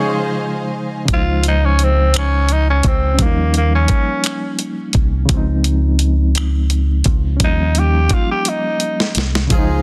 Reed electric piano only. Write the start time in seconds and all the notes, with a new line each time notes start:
Already playing: C#3 F3 G#3 D#4 C5
1.05 C#3 F3
1.11 G#3 C5
1.16 D#4
3.14 F3 C#4
3.20 G3 A#3
3.25 D#4
5.25 C#3 F3
5.31 G#3 C4
5.37 D#4
7.37 F3 C#4
7.42 G3 A#3
7.48 D4
7.54 D#4
9.47 C#3 F3
9.52 G#3 C5
9.58 D#4